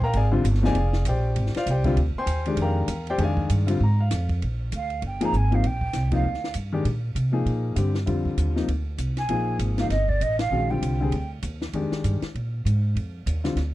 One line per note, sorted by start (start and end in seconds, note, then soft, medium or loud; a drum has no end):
0.00 0.13 A#1 medium
0.00 0.15 A#4 medium
0.00 0.15 A#5 loud
0.00 kick medium
0.04 0.15 F5 medium
0.04 0.15 G5 medium
0.13 0.44 G#1 medium
0.13 0.27 G#4 medium
0.13 0.27 D5 medium
0.13 0.27 F5 medium
0.13 0.27 G#5 medium
0.13 ride medium
0.32 0.43 D3 medium
0.32 0.43 G3 medium
0.32 0.44 C4 medium
0.32 0.44 F4 medium
0.44 0.74 G1 loud
0.44 hi-hat pedal medium
0.44 ride medium
0.54 snare soft
0.62 0.73 C3 medium
0.62 0.74 F3 medium
0.62 0.74 A#3 medium
0.62 0.74 D#4 medium
0.62 1.04 G#5 loud
0.62 snare medium
0.66 1.04 G#4 medium
0.66 1.04 D5 medium
0.66 1.04 F5 medium
0.75 1.05 F1 medium
0.75 ride medium
0.93 snare medium
1.05 1.35 A#1 loud
1.05 1.53 G4 medium
1.05 1.53 C5 medium
1.05 1.53 D5 medium
1.05 1.52 G5 medium
1.05 hi-hat pedal medium
1.05 ride medium
1.36 1.53 G#1 medium
1.36 ride medium
1.46 snare soft
1.54 1.68 F4 medium
1.54 1.68 C5 medium
1.54 1.68 D5 medium
1.54 1.68 F5 loud
1.54 muted upright bass stroke soft
1.54 snare soft
1.54 ride medium
1.66 1.96 C2 loud
1.66 hi-hat pedal medium
1.66 ride medium
1.70 1.97 G4 medium
1.70 1.97 C5 medium
1.70 1.97 D5 medium
1.70 1.97 G5 medium
1.84 1.96 D3 medium
1.84 1.96 G3 medium
1.84 1.96 C4 medium
1.84 1.96 F4 medium
1.84 kick medium
1.84 ride medium
1.96 2.14 D2 medium
1.96 ride medium
2.14 2.57 C6 loud
2.14 muted upright bass stroke soft
2.19 2.57 C5 medium
2.19 2.57 G5 medium
2.19 2.57 G#5 medium
2.26 2.56 D#2 loud
2.26 hi-hat pedal medium
2.26 ride medium
2.45 2.86 D#3 medium
2.45 2.86 G#3 medium
2.45 2.87 D4 medium
2.45 2.87 G4 medium
2.45 ride medium
2.57 2.87 F2 loud
2.57 ride medium
2.62 3.05 A#4 medium
2.62 3.06 F5 medium
2.62 3.06 G5 medium
2.62 3.05 A#5 medium
2.88 3.18 E2 loud
2.88 hi-hat pedal medium
2.88 ride medium
3.07 3.21 G4 medium
3.07 3.20 C5 medium
3.07 3.20 D5 medium
3.07 3.20 G5 loud
3.07 ride soft
3.18 3.48 F2 medium
3.18 3.64 D#3 medium
3.18 3.64 G#3 medium
3.18 3.64 D4 medium
3.18 3.22 G#4 medium
3.18 ride medium
3.23 3.50 G#4 medium
3.23 3.50 D5 medium
3.23 3.50 F5 medium
3.23 3.49 G#5 loud
3.37 kick medium
3.50 3.79 G2 medium
3.50 hi-hat pedal medium
3.50 ride medium
3.67 3.78 D3 medium
3.67 3.79 G3 medium
3.67 3.79 C4 medium
3.67 3.79 F4 medium
3.67 ride medium
3.80 4.10 G#2 medium
3.80 4.00 A#5 medium
4.00 4.28 F5 medium
4.11 4.40 F2 loud
4.11 snare soft
4.11 hi-hat pedal medium
4.11 ride medium
4.29 kick medium
4.29 ride soft
4.42 4.71 A#1 medium
4.42 ride medium
4.72 5.01 D2 medium
4.72 5.02 F5 medium
4.72 hi-hat pedal medium
4.72 ride medium
4.90 ride soft
5.02 5.32 G1 medium
5.02 ride medium
5.06 5.26 G5 medium
5.21 5.31 F3 medium
5.21 5.31 A#3 medium
5.21 5.32 D#4 medium
5.21 5.32 G#4 medium
5.21 5.38 A#5 medium
5.21 ride medium
5.33 5.62 G#1 loud
5.33 5.56 G#5 loud
5.33 hi-hat pedal medium
5.51 5.62 C3 medium
5.51 5.62 F3 medium
5.51 5.62 A#3 medium
5.51 5.62 D#4 medium
5.51 5.68 F5 medium
5.51 ride soft
5.64 5.93 A#1 medium
5.64 6.13 G5 medium
5.64 ride medium
5.81 kick soft
5.93 6.23 C2 medium
5.93 snare soft
5.93 hi-hat pedal medium
5.93 ride medium
6.11 6.22 C3 medium
6.11 6.23 F3 medium
6.11 6.23 A#3 medium
6.11 6.23 D#4 medium
6.11 6.53 F5 medium
6.11 kick medium
6.11 ride medium
6.24 6.53 D2 medium
6.34 snare soft
6.44 snare soft
6.54 6.84 G2 medium
6.54 hi-hat pedal medium
6.54 ride medium
6.72 6.84 D#3 medium
6.72 6.84 G#3 medium
6.72 6.84 D4 medium
6.72 6.84 G4 medium
6.85 7.15 A#2 medium
6.85 ride medium
7.15 7.45 C3 medium
7.15 hi-hat pedal medium
7.15 ride medium
7.32 7.73 F3 medium
7.32 7.74 A#3 medium
7.32 7.74 D#4 medium
7.32 7.74 G#4 medium
7.46 7.76 A#2 medium
7.46 ride medium
7.76 8.06 G2 medium
7.76 7.93 D3 medium
7.76 7.93 G3 medium
7.76 7.93 C4 medium
7.76 7.94 G4 medium
7.76 hi-hat pedal medium
7.76 ride medium
7.95 snare soft
8.06 8.37 F2 medium
8.06 8.52 D3 medium
8.06 8.52 G3 medium
8.06 8.52 C4 medium
8.06 8.52 F4 medium
8.06 ride medium
8.25 kick soft
8.37 8.67 D#2 medium
8.37 hi-hat pedal medium
8.37 ride medium
8.55 8.66 C3 medium
8.55 8.67 F3 medium
8.55 8.67 A#3 medium
8.55 8.67 D#4 medium
8.55 snare soft
8.68 8.97 D2 medium
8.68 ride medium
8.98 9.28 C2 medium
8.98 hi-hat pedal medium
8.98 ride medium
9.17 9.57 G#5 medium
9.17 snare soft
9.17 ride soft
9.29 9.58 A#1 medium
9.29 9.74 F3 medium
9.29 9.75 A#3 medium
9.29 9.75 D#4 medium
9.29 9.75 G#4 medium
9.29 ride medium
9.59 9.89 G#1 medium
9.59 hi-hat pedal soft
9.59 ride medium
9.78 9.89 C3 medium
9.78 9.89 F3 soft
9.78 9.90 A#3 medium
9.78 9.90 D#4 medium
9.78 9.89 F5 medium
9.78 snare soft
9.78 ride soft
9.90 10.19 G1 medium
9.90 10.10 D#5 medium
9.90 snare soft
9.90 ride medium
10.08 10.23 D5 medium
10.08 kick medium
10.20 10.50 A1 medium
10.20 10.39 D#5 medium
10.20 hi-hat pedal medium
10.20 ride medium
10.39 10.71 F5 medium
10.39 snare medium
10.39 ride medium
10.50 10.81 A#1 medium
10.50 10.68 D#3 medium
10.50 10.68 G#3 medium
10.50 10.68 C#4 soft
10.50 10.69 F#4 medium
10.70 10.97 D3 medium
10.70 10.97 G3 medium
10.70 10.97 C4 soft
10.70 10.98 F4 medium
10.70 11.31 G5 medium
10.82 11.11 C2 medium
10.82 hi-hat pedal soft
10.82 ride medium
11.01 11.12 D3 medium
11.01 11.12 G3 medium
11.01 11.12 C4 medium
11.01 11.12 G#4 medium
11.12 11.42 D2 medium
11.12 ride medium
11.43 11.72 D#2 medium
11.43 hi-hat pedal medium
11.43 ride medium
11.62 snare medium
11.73 11.90 F2 medium
11.73 12.19 D#3 medium
11.73 12.19 G#3 medium
11.73 12.20 D4 medium
11.73 12.20 G4 medium
11.73 ride medium
11.92 muted upright bass stroke soft
11.92 snare soft
12.04 12.21 G2 medium
12.04 hi-hat pedal medium
12.04 ride medium
12.22 muted upright bass stroke soft
12.22 snare soft
12.22 ride soft
12.35 12.64 A#2 medium
12.35 ride soft
12.65 12.95 G#2 medium
12.65 hi-hat pedal medium
12.65 ride medium
12.95 13.25 F2 medium
12.95 ride medium
13.26 13.55 D#2 loud
13.26 hi-hat pedal medium
13.26 ride medium
13.44 13.55 D3 medium
13.44 13.55 G3 soft
13.44 13.56 C4 medium
13.44 13.56 F4 medium
13.44 snare soft
13.44 ride soft
13.55 13.74 D2 medium
13.55 snare soft
13.55 ride medium